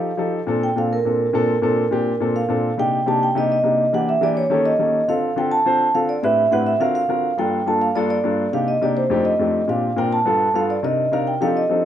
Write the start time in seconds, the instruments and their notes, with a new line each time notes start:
Already playing: grand piano A4, vibraphone F5
0.17 grand piano F3 D#4 G4 A4
0.47 grand piano A#2 C4 D4 A4
0.63 vibraphone G5
0.76 grand piano A#2 C4 D4 A4, vibraphone F5
0.93 vibraphone A#4
1.05 grand piano A#2 C4 D4 A4
1.33 grand piano A#2 C4 D4 A4
1.62 grand piano A#2 C4 D4 A4
1.91 grand piano A#2 C4 D4 G4
2.20 grand piano A#2 C4 D4 A4
2.36 vibraphone F5
2.48 grand piano A#2 C4 D4 A4
2.78 grand piano C3 A#3 D4 D#4 G4, vibraphone G5
3.06 grand piano C3 A#3 D4 D#4 G4, vibraphone A5
3.23 vibraphone G5
3.35 grand piano C3 A#3 D4 D#4 G4, vibraphone D#5
3.52 vibraphone D#5
3.63 grand piano C3 A#3 D4 D#4 G4
3.93 grand piano E3 A#3 D4 G4, vibraphone F#5
4.09 vibraphone E5
4.21 grand piano E3 A#3 D4 G4, vibraphone D5
4.37 vibraphone C#5
4.50 grand piano D#3 A#3 C#4 G4 A4
4.66 vibraphone D#5
4.79 grand piano D#3 A#3 C#4 G4 A4
5.08 grand piano D3 C4 F4 A4, vibraphone F5
5.36 grand piano D3 C4 F4 A4, vibraphone G5
5.51 vibraphone A5
5.65 grand piano D3 C4 F4 C5
5.94 grand piano D3 C4 F4 A4, vibraphone F5
6.09 vibraphone D5
6.23 grand piano A2 C4 D4 E4 G4 B4, vibraphone E5
6.51 grand piano A2 C4 D4 E4 G4 B4, vibraphone F#5
6.66 vibraphone E5
6.80 grand piano D3 C4 F4 F#4 A#4, vibraphone F5
6.95 vibraphone F5
7.08 grand piano D3 C4 F4 F#4 A#4
7.38 grand piano G2 A#3 D4 F4 A4, vibraphone G5
7.66 grand piano G2 A#3 D4 F4 A4, vibraphone A5
7.82 vibraphone F5
7.95 grand piano G2 A#3 D4 F4 A4, vibraphone D5
8.10 vibraphone D5
8.24 grand piano G2 A#3 D4 F4 A4
8.53 grand piano C3 A#3 D4 D#4 G4, vibraphone F5
8.68 vibraphone D#5
8.81 grand piano C3 A#3 D4 D#4 G4, vibraphone D5
8.97 vibraphone C5
9.10 grand piano F2 A3 C4 D4 D#4 G4
9.25 vibraphone D#5
9.39 grand piano F2 A3 C4 D4 D#4 G4
9.67 grand piano A#2 C4 D4 G4, vibraphone F5
9.96 grand piano A#2 C4 D4 A#4, vibraphone G5
10.13 vibraphone A5
10.25 grand piano G2 B3 F4 A4
10.54 grand piano G2 B3 F4 A4, vibraphone F5
10.70 vibraphone D5
10.83 grand piano C3 D4 D#4 A#4, vibraphone D#5
11.12 grand piano C3 D4 D#4 A#4, vibraphone F5
11.27 vibraphone G5
11.41 grand piano F3 C4 D4 D#4 G4 A4, vibraphone F5
11.57 vibraphone D#5
11.69 grand piano F3 C4 D4 D#4 G4 A4